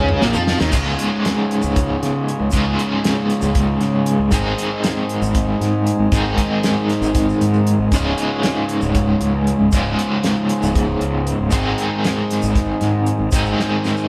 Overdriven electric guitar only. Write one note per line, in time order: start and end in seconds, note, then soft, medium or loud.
0.00 0.21 C#3 medium
0.00 0.22 C#4 medium
0.22 0.34 A#2 medium
0.22 0.34 A#3 loud
0.34 0.59 F3 medium
0.34 0.60 F4 loud
0.60 0.72 D#3 medium
0.60 0.72 D#4 medium
0.72 2.50 C#2 medium
0.72 2.51 G#2 medium
0.72 2.51 C#3 medium
0.72 2.53 G#3 medium
0.72 2.52 F4 medium
2.51 4.31 C#2 medium
2.51 4.30 G#2 medium
2.51 4.31 C#3 medium
2.51 4.32 G#3 medium
2.51 4.32 F4 loud
4.31 6.10 G#2 medium
4.31 6.11 D#3 medium
4.31 6.13 G#3 medium
4.31 6.11 C4 medium
4.31 6.11 D#4 medium
4.31 6.14 G#4 medium
6.12 7.91 G#2 medium
6.12 7.91 D#3 medium
6.12 7.93 G#3 medium
6.12 7.92 C4 medium
6.12 7.92 D#4 medium
6.12 7.95 G#4 medium
7.93 9.71 C#2 medium
7.93 9.71 G#2 medium
7.93 9.71 C#3 medium
7.93 9.73 G#3 medium
7.93 9.72 F4 medium
9.73 11.51 C#2 medium
9.73 11.50 G#2 medium
9.73 11.51 C#3 medium
9.73 11.52 G#3 medium
9.73 11.52 F4 medium
11.51 13.30 G#2 medium
11.51 13.30 D#3 medium
11.51 13.33 G#3 medium
11.51 13.30 C4 medium
11.51 13.31 D#4 medium
11.51 13.34 G#4 medium
13.32 14.08 G#2 medium
13.32 14.08 D#3 medium
13.32 14.08 G#3 loud
13.32 14.08 C4 loud
13.32 14.08 D#4 medium
13.32 14.08 G#4 medium